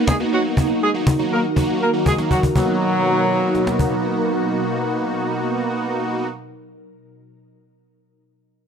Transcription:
0.00 0.13 A#3 medium
0.00 0.30 A#3 medium
0.00 0.13 B3 medium
0.00 0.30 B3 medium
0.00 0.13 D#4 medium
0.00 2.51 D#4 medium
0.00 0.13 F#4 medium
0.07 0.17 G#3 medium
0.07 0.16 G#4 medium
0.07 cajon bass loud
0.07 cajon slap loud
0.20 0.31 A#3 medium
0.20 0.32 B3 medium
0.20 0.31 D#4 medium
0.20 0.32 F#4 medium
0.32 2.53 D#3 medium
0.32 0.82 F#3 medium
0.32 0.41 F#3 medium
0.32 0.82 A#3 medium
0.32 0.82 D#4 medium
0.32 2.53 F#4 medium
0.32 0.41 F#4 medium
0.32 0.82 F#4 medium
0.32 2.53 A#4 medium
0.57 cajon bass loud
0.82 0.91 G#3 medium
0.82 0.90 G#4 medium
0.94 1.12 F#3 medium
0.94 1.12 A#3 medium
0.94 1.12 D#4 medium
0.94 1.12 F#4 medium
1.07 cajon bass loud
1.07 cajon slap loud
1.19 1.46 F#3 medium
1.19 1.46 A#3 medium
1.19 1.46 D#4 medium
1.19 1.46 F#4 medium
1.32 1.41 A#3 medium
1.32 1.40 A#4 medium
1.56 1.83 F#3 medium
1.56 1.83 A#3 medium
1.56 1.83 D#4 medium
1.56 1.83 F#4 loud
1.56 cajon bass medium
1.81 1.90 A#3 medium
1.81 1.90 A#4 medium
1.93 2.11 F#3 medium
1.93 2.11 A#3 medium
1.93 2.11 D#4 medium
1.93 2.11 F#4 medium
2.06 2.15 G#3 medium
2.06 2.14 G#4 medium
2.06 cajon bass loud
2.06 cajon slap medium
2.18 2.45 F#3 medium
2.18 2.45 A#3 medium
2.18 2.45 D#4 medium
2.18 2.45 F#4 medium
2.18 cajon slap medium
2.30 2.40 F#3 medium
2.30 2.39 F#4 medium
2.30 cajon bass medium
2.43 cajon bass medium
2.55 6.27 B2 medium
2.55 4.00 F#3 medium
2.55 6.27 F#3 medium
2.55 6.27 A#3 medium
2.55 6.27 B3 medium
2.55 6.27 D#4 medium
2.55 6.27 F#4 medium
2.55 6.27 A#4 medium
2.55 cajon bass medium
3.55 cajon slap medium
3.67 cajon slap medium
3.79 cajon bass medium

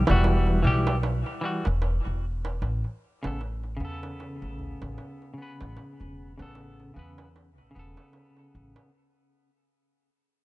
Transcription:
0.07 0.61 E1 medium
0.07 0.59 E3 medium
0.07 0.60 G3 medium
0.07 0.61 F#4 loud
0.07 darbuka tek medium
0.24 darbuka tek medium
0.47 darbuka tek soft
0.63 1.22 B1 medium
0.63 0.94 E3 medium
0.63 0.96 G3 medium
0.67 0.97 G4 medium
0.87 darbuka tek medium
1.03 darbuka tek medium
1.26 darbuka tek soft
1.41 1.64 E3 medium
1.41 1.65 G3 medium
1.45 1.66 F#4 medium
1.65 2.00 E1 medium
1.65 darbuka tek medium
1.82 darbuka tek medium
2.05 2.58 E1 medium
2.05 darbuka tek soft
2.45 darbuka tek medium
2.62 2.81 A1 medium
2.62 darbuka tek medium
2.84 darbuka tek soft
3.23 3.76 A1 medium
3.23 3.39 C#3 medium
3.23 3.40 B3 medium
3.23 darbuka tek medium
3.27 3.41 A4 medium
3.41 darbuka tek soft
3.63 darbuka tek soft
3.77 4.38 E2 medium
3.77 5.32 C#3 medium
3.81 5.34 B3 medium
3.81 5.36 A4 loud
4.03 darbuka tek medium
4.20 darbuka tek medium
4.42 4.76 A1 medium
4.42 darbuka tek soft
4.59 darbuka dum soft
4.82 4.96 A1 medium
4.82 darbuka tek medium
4.98 darbuka tek medium
5.22 darbuka tek soft
5.34 6.32 C#3 medium
5.38 6.34 B3 medium
5.42 6.36 B4 medium
5.61 5.75 A1 medium
5.61 darbuka tek medium
5.77 darbuka tek medium
6.00 6.34 E1 medium
6.00 darbuka tek soft
6.38 6.92 A1 medium
6.38 6.90 C#3 medium
6.38 6.91 B3 medium
6.38 darbuka tek medium
6.42 6.93 A4 medium
6.55 darbuka tek medium
6.80 darbuka tek soft
6.94 7.59 E2 medium
6.94 7.26 C#3 medium
6.94 7.27 B3 medium
6.99 7.28 B4 medium
7.18 darbuka tek medium
7.36 darbuka tek medium
7.58 7.73 A1 medium
7.58 darbuka tek soft
7.71 8.89 C#3 medium
7.75 7.95 E1 medium
7.75 8.91 B3 medium
7.79 8.93 A4 medium
7.97 darbuka tek medium
8.13 darbuka tek medium
8.37 darbuka tek soft
8.55 8.74 A1 medium
8.76 darbuka tek medium

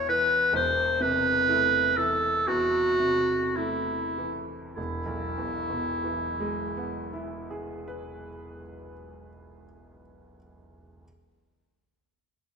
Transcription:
0.00 0.50 E2 medium
0.00 0.56 B2 medium
0.00 0.09 E3 medium
0.00 0.56 B3 medium
0.00 0.56 E4 medium
0.09 0.54 E3 medium
0.09 0.53 B4 loud
0.53 2.42 E1 medium
0.53 2.42 E2 medium
0.53 1.03 C5 loud
1.01 1.77 C3 medium
1.01 1.98 B4 loud
1.48 1.92 A3 medium
1.48 1.92 E4 medium
1.97 2.79 E3 medium
1.97 2.49 A4 loud
2.47 4.73 E2 medium
2.47 3.57 F#4 loud
3.00 3.92 C3 medium
3.56 4.14 A3 soft
3.56 4.58 E4 medium
3.56 4.14 E4 medium
4.18 4.77 E3 medium
4.75 8.00 E1 medium
4.75 7.98 E4 loud
5.06 8.29 B1 medium
5.38 8.61 E2 medium
5.70 8.93 B2 medium
6.04 9.27 E3 medium
6.40 9.64 G#3 medium
6.77 10.00 B3 medium
7.13 10.36 E4 medium
7.51 10.38 G#4 soft
7.88 10.37 B4 medium

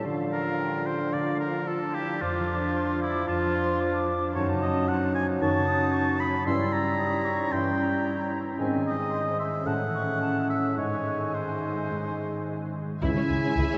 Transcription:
0.00 0.22 A3 soft
0.00 0.76 A4 soft
0.05 1.94 D3 medium
0.05 1.12 D3 soft
0.05 4.18 F3 medium
0.05 4.18 D4 soft
0.05 1.12 F4 soft
0.05 0.59 F5 soft
0.24 1.30 A3 soft
0.32 0.88 A#4 medium
0.42 0.94 F4 soft
0.60 1.67 D5 soft
0.60 1.13 G5 soft
0.86 1.15 C5 medium
0.95 1.48 F4 soft
1.12 2.23 D3 soft
1.12 1.66 F4 medium
1.12 1.40 D5 medium
1.12 1.66 F5 medium
1.31 5.21 A3 soft
1.40 1.69 A#4 medium
1.50 2.02 F4 soft
1.67 1.95 F4 medium
1.67 1.96 A4 medium
1.67 2.74 D5 soft
1.67 2.20 A5 medium
1.86 2.91 A4 soft
1.94 2.22 E4 medium
1.94 2.23 G4 medium
2.04 2.56 F4 soft
2.21 3.27 F2 medium
2.21 4.31 F3 medium
2.21 3.01 D4 medium
2.21 3.01 F4 medium
2.21 2.73 D6 medium
2.40 3.44 F3 soft
2.57 3.09 F4 soft
2.74 3.80 D5 soft
2.74 3.00 C6 medium
2.93 3.98 A4 soft
3.01 3.27 E4 medium
3.01 3.27 D6 medium
3.11 3.62 F4 soft
3.28 4.37 F2 soft
3.28 4.36 D4 medium
3.28 4.06 F4 medium
3.28 3.54 A5 medium
3.45 4.37 F3 soft
3.54 3.81 C6 medium
3.64 4.16 F4 soft
3.81 4.37 D5 soft
3.81 4.35 D6 medium
3.99 5.05 A4 soft
4.17 4.37 F4 soft
4.34 5.40 F#2 medium
4.34 4.53 D#3 medium
4.34 6.42 F#3 medium
4.34 4.53 C#4 medium
4.34 4.87 D#4 medium
4.34 4.47 C#5 medium
4.34 5.13 A5 medium
4.52 5.58 C#3 soft
4.61 4.90 D#5 medium
4.70 5.23 D#4 soft
4.88 5.40 D#4 medium
4.88 5.92 C#5 soft
4.88 5.14 F#5 medium
5.06 6.10 A4 soft
5.15 5.27 G#5 medium
5.24 5.75 D#4 soft
5.40 6.49 F#2 soft
5.40 5.60 D#3 medium
5.40 5.60 C#4 medium
5.40 6.45 D#4 medium
5.40 6.22 A5 medium
5.40 5.67 C#6 medium
5.59 6.49 C#3 soft
5.66 5.93 D#6 medium
5.76 6.28 D#4 soft
5.93 6.98 C#5 soft
5.93 6.20 C#6 medium
6.11 6.49 A4 soft
6.20 6.46 B5 medium
6.20 6.26 D#6 medium
6.29 6.49 D#4 soft
6.46 7.51 G2 medium
6.46 6.65 E3 medium
6.46 8.29 G3 medium
6.46 6.65 C#4 medium
6.46 7.50 E4 medium
6.46 6.74 C6 medium
6.46 6.98 E6 medium
6.64 7.69 G3 soft
6.73 7.54 A#5 medium
6.82 7.16 E4 soft
6.99 8.05 C#5 soft
6.99 7.25 D#6 medium
7.17 7.87 E4 soft
7.25 7.52 C#6 soft
7.35 8.40 C#4 soft
7.52 8.61 G2 soft
7.52 7.71 E3 medium
7.52 7.71 C#4 soft
7.52 8.61 E4 medium
7.52 8.32 G5 medium
7.52 7.79 C6 medium
7.70 8.61 G3 soft
7.78 8.58 A#5 medium
7.88 8.22 E4 soft
8.06 8.61 C#5 soft
8.23 8.61 E4 soft
8.41 8.61 C#4 soft
8.59 9.68 G#2 soft
8.59 8.78 D#3 medium
8.59 9.61 G#3 medium
8.59 9.39 C4 soft
8.59 8.78 C4 soft
8.59 9.11 G#5 medium
8.77 9.68 D#3 soft
8.86 9.35 D#5 medium
8.94 9.46 D#4 soft
9.12 10.19 G#4 soft
9.12 9.18 C6 soft
9.30 9.68 C5 soft
9.39 9.68 E5 medium
9.39 9.45 C6 soft
9.47 9.68 D#4 soft
9.65 10.79 A2 soft
9.65 9.85 G#3 soft
9.65 10.79 A3 medium
9.65 10.73 C#4 soft
9.65 9.85 C#4 soft
9.65 10.49 F#5 medium
9.65 9.72 A5 medium
9.84 10.79 E3 soft
9.94 10.21 C#6 soft
10.02 10.57 C#4 soft
10.21 11.33 G#4 soft
10.21 10.48 A5 medium
10.39 10.79 C#5 soft
10.49 10.77 E5 medium
10.49 10.56 F#5 soft
10.58 10.79 C#4 soft
10.77 11.90 G#2 soft
10.77 10.97 G#3 soft
10.77 12.75 G#3 soft
10.77 10.97 D#4 soft
10.77 11.33 D#4 soft
10.77 11.36 C#5 medium
10.77 12.71 G#5 soft
10.96 12.08 D#3 soft
11.15 11.52 D#4 soft
11.34 12.72 D#4 soft
11.34 12.46 G#4 soft
11.34 12.75 C5 soft
11.53 12.27 D#4 soft
11.72 12.83 G#3 soft
11.91 13.05 G#2 soft
11.91 12.11 G#3 soft
11.91 12.11 D#4 soft
12.09 13.05 D#3 soft
12.28 12.64 D#4 soft
12.47 13.39 G#4 soft
12.65 13.05 D#4 soft
12.84 13.76 G#3 soft
13.03 13.09 C#2 medium
13.03 13.78 C#3 medium
13.03 13.78 E4 medium
13.03 13.08 E4 medium
13.03 13.78 G#4 medium
13.03 13.78 E5 medium
13.03 13.78 G#5 medium
13.16 13.22 C#2 soft
13.16 13.22 C#4 soft
13.22 13.58 C#4 soft
13.31 13.37 C#2 soft
13.31 13.37 G#3 soft
13.41 13.78 G#4 soft
13.45 13.51 C#2 soft
13.45 13.50 C#4 soft
13.59 13.65 C#2 medium
13.59 13.78 C#4 soft
13.59 13.65 E4 medium
13.73 13.78 C#2 soft
13.73 13.78 C#4 medium

